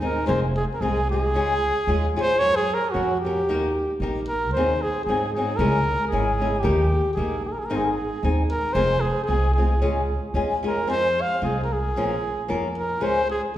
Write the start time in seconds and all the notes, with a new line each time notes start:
Already playing: D#2
0.01 G#3 C4 D#4 G#4
0.05 A#4
0.26 F1 F3 G#3 C4 F4 G#4 C5
0.56 G#4
0.74 A#4
0.81 C2 G#3 C4 F4 G#4
1.11 G#3 C4 F4 G#4
1.34 C#2 C#3 G#3 C#4 F4 G#4
1.87 D#2 G#3 C#4 F4 G#4
2.16 G#3 C#4 F4 G#4
2.21 C5
2.39 F#2 F#3 C#4 F#4 A#4 C#5
2.56 G#4
2.74 A#4
2.91 F2 F#3 C#4 F#4
2.96 F#4 A#4
3.20 G4
3.24 F#3 C#4 F#4 A#4
3.48 D#2 D#3 A#3 D#4 G4 A#4
4.00 A#1 A#3 D#4 G4 A#4
4.28 A#4
4.53 D#2 D#3 F#3 C4 D#4 C5
4.58 G#4
4.82 G#4
5.05 G#2 F#3 G#4
5.09 C4 D#4 G#4
5.33 F#3 C4 G#4
5.38 D#4 G#4
5.57 C#2 C#3 G#3 C#4 E4 G#4 A#4
6.08 G#3 G#4
6.12 G#1 C#4 E4 G#4
6.40 G#3 C#4 E4 G#4
6.60 D#3 A#3 G4
6.64 D#2 D#4 G4 A#4
7.14 A#1 A#3 D#4 G#4
7.18 G4 A#4
7.46 G#4
7.52 A#4
7.59 G#4
7.65 A#4
7.70 G#1 G#2 D#3 G#3 C4 D#4 G#4
7.76 G#4
7.85 A#4
7.89 G#4
8.22 D#2 G#3 C4 D#4 G#4
8.51 A#4
8.73 F1 F3 G#3 C4 F4 G#4 C5
9.01 G#4
9.25 C2 G#3 C4 G#4
9.29 F4 G#4
9.54 G#3 G#4
9.58 C4 F4 G#4
9.81 C#2 C#3 G#3 C#4 F4 G#4
10.34 E2 G#3 C#4 F4 G#4
10.63 G#3 C#4 F4 G#4
10.67 A#4
10.87 F2 F3 G#3 C4 F4 G#4 C5
11.21 F5
11.42 C2 G#3 C4 F4 G#4
11.64 A#4
11.73 G#4
11.95 A#1 A#2 F3 A#3 C#4 F4 A#4
12.48 F2 A#3 C#4 F4 A#4
12.78 A#4
13.00 C#2 C#3 G#3 C#4 F4 G#4 C5
13.30 G#4